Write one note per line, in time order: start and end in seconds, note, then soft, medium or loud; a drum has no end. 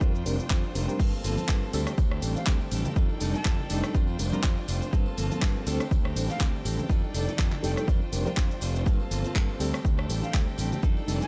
0.00 0.22 F2 medium
0.00 0.15 G3 medium
0.00 0.11 C4 medium
0.00 0.98 D4 medium
0.00 0.11 D4 medium
0.00 0.15 D4 medium
0.00 0.15 F4 medium
0.00 0.98 C5 medium
0.00 0.13 C5 medium
0.00 0.96 G5 medium
0.00 kick loud
0.00 shaker soft
0.14 0.50 D4 soft
0.14 0.50 F4 medium
0.14 0.50 C5 medium
0.14 shaker soft
0.25 0.37 F1 loud
0.25 0.36 G3 medium
0.25 0.36 C4 medium
0.25 0.36 D4 medium
0.25 0.36 A#4 loud
0.25 open hi-hat loud
0.25 shaker medium
0.40 muted fingered electric bass stroke soft
0.40 shaker soft
0.50 0.61 F2 loud
0.50 0.73 G3 medium
0.50 0.74 D4 loud
0.50 0.75 F4 loud
0.50 0.76 C5 loud
0.50 kick loud
0.50 clap loud
0.50 shaker soft
0.74 0.86 F1 loud
0.74 0.88 G3 medium
0.74 0.85 G3 medium
0.74 0.85 C4 medium
0.74 0.85 D4 medium
0.74 0.89 D4 medium
0.74 0.89 F4 medium
0.74 0.85 A#4 medium
0.74 0.87 C5 medium
0.74 open hi-hat loud
0.74 shaker medium
0.88 0.98 G3 medium
0.88 0.98 C4 medium
0.88 0.98 D4 medium
0.88 1.00 D4 soft
0.88 0.99 F4 medium
0.88 0.99 A#4 medium
0.88 0.99 C5 medium
0.88 shaker soft
0.99 1.11 G2 loud
0.99 1.22 A#3 loud
0.99 1.73 A#3 medium
0.99 1.23 C4 medium
0.99 1.73 F4 medium
0.99 1.25 F4 medium
0.99 1.25 A4 loud
0.99 2.94 C5 medium
0.99 1.73 A5 medium
0.99 kick loud
0.99 crash medium
0.99 tambourine medium
0.99 shaker soft
1.12 tambourine soft
1.24 1.35 G1 medium
1.24 1.71 F3 medium
1.24 1.37 A#3 medium
1.24 1.71 A#3 medium
1.24 1.38 C4 medium
1.24 1.71 C4 medium
1.24 1.38 F4 medium
1.24 1.71 A4 medium
1.24 1.36 A4 medium
1.24 open hi-hat loud
1.24 tambourine loud
1.24 shaker medium
1.37 1.48 C4 soft
1.37 1.49 F4 medium
1.37 1.48 A4 medium
1.37 muted fingered electric bass stroke soft
1.37 tambourine soft
1.37 high conga medium
1.37 shaker soft
1.48 1.60 G2 medium
1.48 1.72 A#3 medium
1.48 1.73 C4 medium
1.48 1.74 F4 loud
1.48 1.74 A4 loud
1.48 kick loud
1.48 clap loud
1.48 tambourine medium
1.48 shaker soft
1.63 tambourine soft
1.73 1.85 D2 loud
1.73 2.11 G3 medium
1.73 1.89 G3 loud
1.73 1.89 C4 medium
1.73 2.12 C4 medium
1.73 1.89 D4 medium
1.73 2.95 D4 medium
1.73 2.11 G4 medium
1.73 1.89 A4 loud
1.73 2.09 A4 medium
1.73 4.90 G5 medium
1.73 open hi-hat loud
1.73 tambourine loud
1.73 shaker medium
1.87 cross-stick medium
1.87 tambourine soft
1.87 shaker soft
1.98 2.19 D2 medium
1.98 kick loud
1.98 tambourine medium
1.98 shaker soft
2.11 2.46 C4 soft
2.11 2.47 G4 medium
2.11 2.47 A4 medium
2.11 cross-stick medium
2.11 tambourine soft
2.22 2.34 A1 loud
2.22 2.32 G3 medium
2.22 2.33 C4 medium
2.22 2.33 D4 medium
2.22 2.33 A4 medium
2.22 open hi-hat loud
2.22 tambourine medium
2.22 shaker medium
2.36 2.50 F5 loud
2.36 muted fingered electric bass stroke soft
2.36 tambourine soft
2.36 shaker soft
2.46 2.58 D2 medium
2.46 2.70 G3 loud
2.46 2.57 G3 medium
2.46 2.57 C4 medium
2.46 2.71 C4 medium
2.46 2.57 D4 medium
2.46 2.72 G4 loud
2.46 2.57 A4 loud
2.46 2.73 A4 loud
2.46 kick loud
2.46 clap loud
2.46 tambourine medium
2.46 shaker soft
2.61 tambourine soft
2.71 2.83 A1 loud
2.71 2.85 G3 medium
2.71 2.87 G3 medium
2.71 2.87 C4 medium
2.71 2.85 C4 medium
2.71 2.87 D4 medium
2.71 2.85 G4 medium
2.71 2.88 A4 medium
2.71 2.83 A4 medium
2.71 open hi-hat loud
2.71 tambourine medium
2.71 high conga medium
2.71 shaker medium
2.85 2.96 C4 medium
2.85 2.97 G4 medium
2.85 2.96 A4 medium
2.85 tambourine soft
2.85 low conga loud
2.85 shaker soft
2.96 3.07 F2 loud
2.96 3.94 D#3 medium
2.96 3.19 G3 medium
2.96 3.21 D4 medium
2.96 3.21 D#4 loud
2.96 3.94 A4 medium
2.96 3.22 A4 loud
2.96 3.94 D5 medium
2.96 kick loud
2.96 tambourine medium
2.96 shaker soft
3.09 tambourine soft
3.20 3.32 F1 medium
3.20 3.34 G3 medium
3.20 3.36 G3 medium
3.20 3.36 D4 medium
3.20 3.35 D4 medium
3.20 3.37 D#4 medium
3.20 3.34 D#4 medium
3.20 3.37 A4 loud
3.20 3.33 A4 medium
3.20 open hi-hat loud
3.20 tambourine medium
3.20 shaker medium
3.34 3.45 D4 medium
3.34 3.46 D#4 medium
3.34 3.45 A4 medium
3.34 3.83 A5 loud
3.34 muted fingered electric bass stroke soft
3.34 tambourine soft
3.34 shaker soft
3.45 3.56 F2 loud
3.45 3.68 G3 medium
3.45 3.70 D4 medium
3.45 3.71 D#4 loud
3.45 3.71 A4 medium
3.45 kick loud
3.45 clap loud
3.45 tambourine medium
3.45 shaker soft
3.59 tambourine soft
3.59 low conga medium
3.70 3.81 F1 loud
3.70 3.93 G3 medium
3.70 3.92 G3 loud
3.70 3.92 D4 medium
3.70 3.94 D4 medium
3.70 3.92 D#4 medium
3.70 3.95 D#4 medium
3.70 3.92 A4 loud
3.70 3.96 A4 medium
3.70 open hi-hat loud
3.70 tambourine loud
3.70 shaker medium
3.84 cross-stick medium
3.84 tambourine soft
3.84 shaker soft
3.94 4.15 F2 medium
3.94 4.08 G3 medium
3.94 4.05 G3 medium
3.94 4.05 C4 medium
3.94 4.92 D4 medium
3.94 4.08 D4 medium
3.94 4.05 D4 medium
3.94 4.08 F4 medium
3.94 4.05 A#4 medium
3.94 4.92 C5 medium
3.94 4.06 C5 medium
3.94 kick loud
3.94 tambourine medium
3.94 shaker soft
4.07 4.34 D4 medium
4.07 4.32 F4 medium
4.07 4.31 C5 medium
4.07 tambourine soft
4.19 4.30 F1 loud
4.19 4.29 G3 medium
4.19 4.29 C4 medium
4.19 4.30 D4 medium
4.19 4.30 A#4 medium
4.19 open hi-hat loud
4.19 tambourine medium
4.19 shaker medium
4.32 4.41 G3 medium
4.32 4.41 C4 medium
4.32 4.41 D4 medium
4.32 4.43 D4 soft
4.32 4.43 F4 medium
4.32 4.41 A#4 loud
4.32 4.43 C5 medium
4.32 muted fingered electric bass stroke soft
4.32 tambourine soft
4.32 high conga medium
4.32 shaker soft
4.43 4.55 F2 medium
4.43 4.66 G3 medium
4.43 4.68 F4 loud
4.43 kick loud
4.43 clap loud
4.43 tambourine soft
4.43 shaker soft
4.57 tambourine soft
4.67 4.79 F1 loud
4.67 4.81 G3 medium
4.67 4.82 D4 medium
4.67 4.81 F4 medium
4.67 4.80 C5 medium
4.67 open hi-hat loud
4.67 tambourine medium
4.67 shaker medium
4.81 4.92 D4 medium
4.81 4.92 F4 medium
4.81 4.92 C5 medium
4.81 tambourine soft
4.81 shaker soft
4.92 5.04 G2 loud
4.92 5.15 A#3 medium
4.92 5.66 A#3 medium
4.92 5.17 C4 loud
4.92 5.66 F4 medium
4.92 5.18 F4 medium
4.92 5.18 A4 loud
4.92 6.88 C5 medium
4.92 5.66 A5 medium
4.92 kick loud
4.92 tambourine medium
4.92 shaker soft
5.06 tambourine soft
5.16 5.29 G1 medium
5.16 5.64 F3 medium
5.16 5.31 A#3 medium
5.16 5.64 A#3 medium
5.16 5.64 C4 medium
5.16 5.31 C4 medium
5.16 5.31 F4 medium
5.16 5.64 A4 medium
5.16 5.29 A4 medium
5.16 open hi-hat loud
5.16 tambourine loud
5.16 shaker medium
5.30 5.41 C4 medium
5.30 5.42 F4 medium
5.30 5.42 A4 medium
5.30 muted fingered electric bass stroke soft
5.30 tambourine soft
5.30 high conga medium
5.30 shaker soft
5.41 5.53 G2 loud
5.41 5.65 A#3 medium
5.41 5.66 C4 medium
5.41 5.67 F4 loud
5.41 5.67 A4 loud
5.41 kick loud
5.41 clap loud
5.41 tambourine medium
5.41 shaker soft
5.55 tambourine soft
5.66 5.78 D2 loud
5.66 6.04 G3 medium
5.66 5.82 G3 loud
5.66 6.05 C4 medium
5.66 5.82 C4 medium
5.66 6.88 D4 medium
5.66 5.83 D4 medium
5.66 6.04 G4 medium
5.66 5.83 A4 loud
5.66 6.03 A4 medium
5.66 8.83 G5 medium
5.66 open hi-hat loud
5.66 tambourine medium
5.66 shaker medium
5.80 cross-stick medium
5.80 tambourine soft
5.80 shaker soft
5.91 6.12 D2 medium
5.91 kick loud
5.91 tambourine medium
5.91 shaker soft
6.04 6.30 C4 soft
6.04 6.29 G4 medium
6.04 6.27 A4 medium
6.04 cross-stick medium
6.04 tambourine soft
6.16 6.27 A1 loud
6.16 6.26 G3 medium
6.16 6.26 C4 medium
6.16 6.26 D4 medium
6.16 6.26 A4 medium
6.16 open hi-hat loud
6.16 tambourine medium
6.16 shaker medium
6.28 6.39 C4 soft
6.28 6.40 G4 medium
6.28 6.40 A4 medium
6.28 6.44 F5 medium
6.28 muted fingered electric bass stroke soft
6.28 tambourine soft
6.28 shaker soft
6.39 6.52 D2 medium
6.39 6.63 G3 loud
6.39 6.50 G3 medium
6.39 6.64 C4 loud
6.39 6.51 C4 medium
6.39 6.51 D4 medium
6.39 6.65 G4 loud
6.39 6.51 A4 loud
6.39 6.66 A4 loud
6.39 kick loud
6.39 clap loud
6.39 shaker soft
6.54 tambourine soft
6.64 6.76 A1 loud
6.64 6.78 G3 medium
6.64 6.81 G3 medium
6.64 6.81 C4 medium
6.64 6.79 C4 medium
6.64 6.81 D4 medium
6.64 6.78 G4 medium
6.64 6.81 A4 medium
6.64 6.76 A4 medium
6.64 open hi-hat loud
6.64 tambourine loud
6.64 high conga medium
6.64 shaker medium
6.77 6.89 C4 soft
6.77 6.90 G4 medium
6.77 6.89 A4 medium
6.77 tambourine soft
6.77 low conga medium
6.77 shaker soft
6.89 7.01 F2 loud
6.89 7.87 D#3 medium
6.89 7.12 G3 medium
6.89 7.13 D4 loud
6.89 7.14 D#4 medium
6.89 7.87 A4 medium
6.89 7.15 A4 medium
6.89 7.87 D5 medium
6.89 kick loud
6.89 tambourine medium
6.89 shaker soft
7.04 tambourine soft
7.13 7.25 F1 medium
7.13 7.27 G3 medium
7.13 7.30 G3 medium
7.13 7.30 D4 medium
7.13 7.28 D4 medium
7.13 7.30 D#4 medium
7.13 7.27 D#4 medium
7.13 7.30 A4 loud
7.13 7.25 A4 medium
7.13 7.30 D5 medium
7.13 open hi-hat loud
7.13 tambourine medium
7.13 shaker medium
7.27 7.37 D4 soft
7.27 7.38 D#4 medium
7.27 7.38 A4 medium
7.27 muted fingered electric bass stroke soft
7.27 tambourine soft
7.27 shaker soft
7.38 7.50 F2 loud
7.38 7.61 G3 medium
7.38 7.62 D4 loud
7.38 7.63 D#4 medium
7.38 7.64 A4 loud
7.38 kick loud
7.38 clap loud
7.38 tambourine soft
7.38 shaker soft
7.52 clap soft
7.52 tambourine soft
7.52 low conga medium
7.62 7.74 F1 loud
7.62 7.86 G3 medium
7.62 7.85 G3 loud
7.62 7.85 D4 medium
7.62 7.87 D4 medium
7.62 7.85 D#4 medium
7.62 7.88 D#4 medium
7.62 7.86 A4 loud
7.62 7.89 A4 medium
7.62 7.72 G5 medium
7.62 open hi-hat loud
7.62 tambourine medium
7.62 shaker medium
7.77 7.84 G5 medium
7.77 cross-stick medium
7.77 tambourine soft
7.77 shaker soft
7.87 7.99 F2 medium
7.87 8.01 G3 medium
7.87 8.85 D4 medium
7.87 8.02 D4 medium
7.87 8.01 F4 medium
7.87 10.80 C5 medium
7.87 7.99 C5 medium
7.87 kick loud
7.87 tambourine medium
7.87 shaker soft
8.01 8.27 D4 medium
8.01 8.25 F4 medium
8.01 8.24 C5 medium
8.01 tambourine soft
8.12 8.24 F1 loud
8.12 8.23 G3 medium
8.12 8.23 C4 medium
8.12 8.23 D4 medium
8.12 8.23 A#4 medium
8.12 open hi-hat loud
8.12 tambourine medium
8.12 shaker medium
8.25 8.34 G3 medium
8.25 8.34 C4 medium
8.25 8.34 D4 medium
8.25 8.36 D4 soft
8.25 8.37 F4 soft
8.25 8.35 A#4 loud
8.25 8.37 C5 medium
8.25 muted fingered electric bass stroke soft
8.25 tambourine soft
8.25 high conga medium
8.25 shaker soft
8.36 8.48 F2 medium
8.36 8.59 G3 medium
8.36 8.61 D4 medium
8.36 8.61 F4 loud
8.36 8.62 C5 loud
8.36 kick loud
8.36 clap loud
8.36 tambourine soft
8.36 shaker soft
8.51 tambourine soft
8.51 shaker soft
8.60 8.82 F1 medium
8.60 8.75 G3 medium
8.60 8.75 D4 medium
8.60 8.75 F4 medium
8.60 8.73 C5 medium
8.60 open hi-hat loud
8.60 tambourine loud
8.60 shaker medium
8.74 8.86 D4 soft
8.74 8.86 F4 medium
8.74 8.86 C5 medium
8.74 tambourine soft
8.74 shaker soft
8.86 8.97 G2 loud
8.86 9.09 A#3 medium
8.86 9.59 A#3 medium
8.86 9.10 C4 medium
8.86 9.59 F4 medium
8.86 9.11 F4 loud
8.86 9.12 A4 loud
8.86 9.60 A5 medium
8.86 kick loud
8.86 tambourine medium
8.86 shaker soft
9.00 tambourine soft
9.10 9.22 G1 medium
9.10 9.57 F3 medium
9.10 9.24 A#3 medium
9.10 9.58 A#3 medium
9.10 9.58 C4 medium
9.10 9.25 C4 medium
9.10 9.24 F4 medium
9.10 9.58 A4 medium
9.10 9.23 A4 medium
9.10 open hi-hat loud
9.10 tambourine medium
9.10 shaker medium
9.24 9.35 C4 medium
9.24 9.35 F4 medium
9.24 9.35 A4 medium
9.24 muted fingered electric bass stroke soft
9.24 tambourine soft
9.24 high conga medium
9.24 shaker soft
9.35 9.47 G2 loud
9.35 9.59 A#3 medium
9.35 9.59 C4 medium
9.35 9.61 F4 medium
9.35 9.61 A4 loud
9.35 kick loud
9.35 clap loud
9.35 tambourine soft
9.35 shaker soft
9.49 tambourine soft
9.59 9.71 D2 loud
9.59 9.98 G3 medium
9.59 9.76 G3 loud
9.59 9.98 C4 medium
9.59 9.76 C4 medium
9.59 10.82 D4 medium
9.59 9.76 D4 medium
9.59 9.98 G4 medium
9.59 9.76 A4 loud
9.59 9.96 A4 medium
9.59 11.28 G5 medium
9.59 open hi-hat loud
9.59 tambourine medium
9.59 shaker medium
9.74 cross-stick medium
9.74 tambourine soft
9.74 shaker soft
9.85 10.05 D2 medium
9.85 kick loud
9.85 tambourine medium
9.85 shaker soft
9.97 10.24 C4 medium
9.97 10.22 G4 medium
9.97 10.21 A4 medium
9.97 cross-stick medium
9.97 tambourine soft
10.09 10.20 A1 loud
10.09 10.19 G3 medium
10.09 10.19 C4 medium
10.09 10.20 D4 medium
10.09 10.20 A4 medium
10.09 open hi-hat loud
10.09 tambourine medium
10.09 shaker medium
10.22 10.32 C4 soft
10.22 10.33 G4 medium
10.22 10.33 A4 medium
10.22 10.37 F5 medium
10.22 muted fingered electric bass stroke soft
10.22 tambourine soft
10.22 shaker soft
10.33 10.45 D2 medium
10.33 10.56 G3 medium
10.33 10.44 G3 medium
10.33 10.58 C4 loud
10.33 10.44 C4 medium
10.33 10.44 D4 medium
10.33 10.58 G4 loud
10.33 10.44 A4 loud
10.33 10.59 A4 loud
10.33 kick loud
10.33 clap loud
10.33 tambourine medium
10.33 shaker soft
10.48 tambourine soft
10.57 10.70 A1 loud
10.57 10.72 G3 medium
10.57 10.74 G3 medium
10.57 10.74 C4 medium
10.57 10.72 C4 medium
10.57 10.74 D4 medium
10.57 10.72 G4 medium
10.57 10.74 A4 medium
10.57 10.70 A4 medium
10.57 open hi-hat loud
10.57 tambourine medium
10.57 high conga medium
10.57 shaker medium
10.71 10.83 C4 soft
10.71 10.84 G4 medium
10.71 10.83 A4 medium
10.71 tambourine soft
10.71 low conga medium
10.71 shaker soft
10.82 10.94 F2 loud
10.82 11.28 D#3 medium
10.82 11.06 G3 medium
10.82 11.07 D4 loud
10.82 11.08 D#4 loud
10.82 11.28 A4 medium
10.82 11.08 A4 loud
10.82 11.28 D5 medium
10.82 kick loud
10.82 tambourine soft
10.82 shaker soft
10.97 tambourine soft
11.07 11.19 F1 medium
11.07 11.21 G3 medium
11.07 11.23 G3 medium
11.07 11.23 D4 medium
11.07 11.21 D4 medium
11.07 11.23 D#4 medium
11.07 11.21 D#4 medium
11.07 11.23 A4 loud
11.07 11.19 A4 medium
11.07 open hi-hat loud
11.07 tambourine medium
11.07 shaker medium
11.20 11.28 D4 medium
11.20 11.28 D#4 medium
11.20 11.28 A4 medium
11.20 11.28 A5 loud
11.20 muted fingered electric bass stroke soft
11.20 tambourine soft
11.20 shaker soft